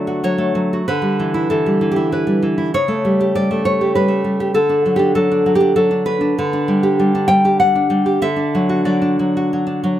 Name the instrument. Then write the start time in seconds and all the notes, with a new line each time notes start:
nylon-string guitar
Already playing: D3 F#3 A3 D5
0.07 F#4
0.24 F#3 C#5
0.38 A3
0.55 F#3
0.73 F#4
0.88 D3 B4
1.02 G3
1.20 E3
1.34 E4
1.50 E3 A4
1.66 G3
1.81 E3
1.92 G4
1.96 E4
2.12 E3 B4
2.27 G3
2.42 E3
2.58 E4
2.74 C#3 C#5
2.88 A3
3.05 G3
3.21 G4
3.35 G3 D5
3.51 A3
3.65 G3 C#5
3.81 G4
3.95 G3 B4
4.08 A3
4.24 G3
4.40 G4
4.54 D3 A4
4.69 D4
4.86 F#3
4.96 D4 G4
5.15 F#3 A4
5.32 D4
5.46 F#3
5.55 G4
5.60 D4
5.76 F#3 A4
5.91 D4
6.06 F#3 B4
6.21 D4
6.38 D3
6.53 D4
6.68 G3
6.83 G4
6.99 G3
7.15 D4
7.28 G3 G5
7.45 G4
7.60 G3 F#5
7.75 D4
7.90 G3
8.06 G4
8.22 D3 E5
8.36 D4
8.55 F#3
8.69 F#4
8.85 F#3 D5
9.02 D4
9.19 F#3
9.37 F#4
9.53 F#3
9.67 D4
9.84 F#3